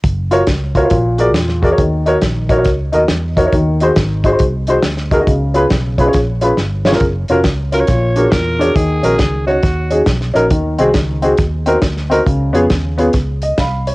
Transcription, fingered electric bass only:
X:1
M:4/4
L:1/8
Q:"Swing" 1/4=138
K:F#
V:1 name="Fingered electric bass" clef=bass
F,,,2 C,,2 A,,,2 =E,,2 | D,,2 A,,,2 C,, D,, =E,,2 | D,,2 G,,,2 ^B,,,2 =D,,2 | C,,2 B,,,2 A,,,2 =G,,,2 |
F,,, E,,, C,,2 A,,,2 =E,,2 | D,, A,,, C,,2 D,,2 B,,, A,,, | D,, ^B,,, C,,2 D,,2 =D,,2 | C,, E,, D,,2 C,,2 ^B,,,2 |]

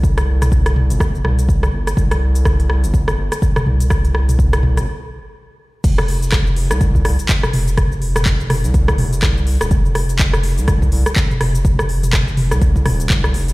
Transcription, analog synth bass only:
X:1
M:4/4
L:1/16
Q:"Swing 16ths" 1/4=124
K:Cm
V:1 name="Analog synth bass" clef=bass
C,,6- C,, G,,,3 C,,4 G,,,2 | C,,6- C,, G,,,3 G,,, z3 C,,2- | C,,6- C,, G,,, z8 | F,,,6- F,,, C,,3 C,, z3 F,,,2- |
F,,,6- F,,, C,,3 F,,,2 C,,3 E,,, | F,,,6- F,,, C,,3 C,, z3 F,,,2- | F,,,6- F,,, C,,3 E,,,2 C,,2 F,,,2 |]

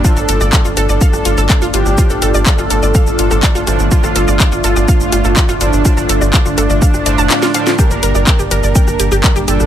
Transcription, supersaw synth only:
X:1
M:4/4
L:1/8
Q:1/4=124
K:Dphr
V:1 name="Supersaw synth"
A3 A4 G- | G2 A6 | F3 F4 D- | D2 D6 |
B3 B4 A |]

